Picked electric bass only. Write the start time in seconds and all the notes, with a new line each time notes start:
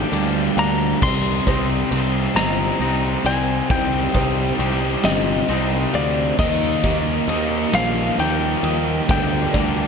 0.12 D2
0.57 D2
1.02 C2
1.47 C2
1.91 C2
2.35 G1
2.80 C2
3.24 C2
3.70 C2
4.15 C2
4.59 C2
5.04 G1
5.49 C2
5.94 D2
6.39 D#2
6.84 D#2
7.28 D#2
7.73 A#1
8.19 D#2
8.63 D#2
9.09 D2
9.54 D2